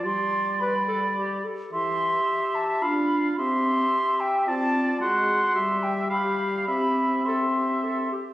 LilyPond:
<<
  \new Staff \with { instrumentName = "Flute" } { \time 3/4 \key c \major \tempo 4 = 108 c'''4 b''4. r8 | c'''4. a''8 b''4 | c'''4. g''8 a''4 | c'''4. g''8 b''4 |
b''4 c'''4. r8 | }
  \new Staff \with { instrumentName = "Oboe" } { \time 3/4 \key c \major d''4 d''4. r8 | e''2 f''4 | e''2 d''4 | ges''4 e''4 f''4 |
e''4 e''4. r8 | }
  \new Staff \with { instrumentName = "Clarinet" } { \time 3/4 \key c \major g'4 b'8 a'8 g'8 a'8 | g'2 f'4 | g'2 f'4 | ges'4 g'4 g'4 |
g'4 a'8 g'8 a'8 g'8 | }
  \new Staff \with { instrumentName = "French horn section" } { \time 3/4 \key c \major g2~ g8 r8 | e4 r4 d'4 | c'4 r4 c'4 | aes4 g2 |
c'2~ c'8 r8 | }
>>